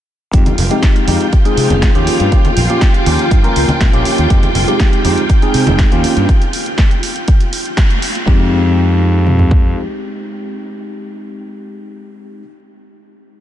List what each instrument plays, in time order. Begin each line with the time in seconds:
0.33 fingered electric bass F2, tine electric piano G#3 C4 D#4 G4, string machine F4 G5, kick, closed hi-hat, shaker
0.46 closed hi-hat, high conga, shaker
0.58 fingered electric bass F1, open hi-hat, low conga
0.70 tine electric piano G#3 C4 D#4 G4, closed hi-hat, shaker
0.83 kick, snare, closed hi-hat
0.96 closed hi-hat, shaker
1.07 fingered electric bass F2, tine electric piano G#3 C4 D#4 G4, open hi-hat, high conga
1.20 closed hi-hat, shaker
1.32 kick, closed hi-hat, shaker
1.45 tine electric piano G#3 C4 D#4 G#4, closed hi-hat, shaker
1.57 fingered electric bass C3, open hi-hat
1.70 fingered electric bass F1, closed hi-hat, high conga, shaker
1.82 kick, snare, closed hi-hat, shaker
1.95 fingered electric bass D#2, tine electric piano A#3 C#4 F4 G4, closed hi-hat, shaker
2.07 muted fingered electric bass stroke, open hi-hat
2.20 fingered electric bass G2, closed hi-hat, shaker
2.32 tine electric piano A#3 C#4 F4 G4, kick, closed hi-hat, shaker
2.44 muted fingered electric bass stroke, closed hi-hat, high conga, shaker
2.57 fingered electric bass A#1, open hi-hat, low conga
2.69 tine electric piano A#3 C#4 F4 G4, closed hi-hat, shaker
2.81 kick, snare, closed hi-hat
2.94 closed hi-hat, shaker
3.06 fingered electric bass D#2, tine electric piano A#3 C#4 F4 G4, open hi-hat, high conga
3.19 closed hi-hat, shaker
3.31 fingered electric bass G2, kick, closed hi-hat
3.44 tine electric piano A#3 C#4 F4 A#4, muted fingered electric bass stroke, closed hi-hat, shaker
3.56 fingered electric bass C#2, open hi-hat
3.68 muted fingered electric bass stroke, closed hi-hat, high conga, shaker
3.81 fingered electric bass A#1, kick, snare, closed hi-hat, shaker
3.93 fingered electric bass A#1, tine electric piano A#3 C#4 F4 G4, closed hi-hat, shaker
4.05 muted fingered electric bass stroke, open hi-hat
4.18 fingered electric bass D#2, closed hi-hat, shaker
4.30 fingered electric bass F2, tine electric piano G#3 C4 D#4 G4, kick, closed hi-hat, shaker
4.43 closed hi-hat, high conga, shaker
4.55 fingered electric bass F1, open hi-hat, low conga
4.67 tine electric piano G#3 C4 D#4 G4, closed hi-hat, shaker
4.80 kick, snare, closed hi-hat, shaker
4.93 closed hi-hat, shaker
5.04 fingered electric bass F2, tine electric piano G#3 C4 D#4 G4, open hi-hat, high conga
5.17 closed hi-hat, shaker
5.30 kick, closed hi-hat
5.42 tine electric piano G#3 C4 D#4 G#4, closed hi-hat, shaker
5.54 fingered electric bass C3, open hi-hat
5.67 fingered electric bass F1, closed hi-hat, high conga, shaker
5.79 kick, snare, closed hi-hat, shaker
5.92 fingered electric bass D#2, tine electric piano A#3 C#4 F4 G4, closed hi-hat, shaker
6.04 muted fingered electric bass stroke, open hi-hat
6.16 fingered electric bass G2, closed hi-hat, shaker
6.29 kick, closed hi-hat
6.42 closed hi-hat
6.53 open hi-hat
6.66 closed hi-hat
6.78 kick, snare, closed hi-hat
6.91 closed hi-hat
7.03 open hi-hat
7.16 closed hi-hat
7.28 kick, closed hi-hat
7.40 closed hi-hat
7.53 open hi-hat
7.66 closed hi-hat
7.77 kick, snare, closed hi-hat
7.90 closed hi-hat
8.02 open hi-hat
8.15 closed hi-hat
8.26 fingered electric bass F2, tine electric piano G#3 C4 D#4 G4, kick
9.27 mid tom
9.39 floor tom
9.51 kick